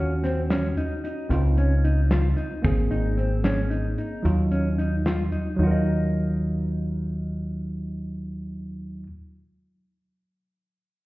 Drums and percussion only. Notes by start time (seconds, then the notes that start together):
0.24 snare, closed hi-hat
0.50 snare, closed hi-hat
0.77 closed hi-hat
1.05 closed hi-hat
1.31 closed hi-hat
1.58 closed hi-hat
1.85 closed hi-hat
2.11 snare, closed hi-hat
2.38 closed hi-hat
2.64 kick, closed hi-hat
2.91 closed hi-hat
3.19 closed hi-hat
3.44 snare, closed hi-hat
3.71 closed hi-hat
3.98 closed hi-hat
4.25 closed hi-hat
4.52 closed hi-hat
4.79 closed hi-hat
5.06 snare, closed hi-hat
5.32 closed hi-hat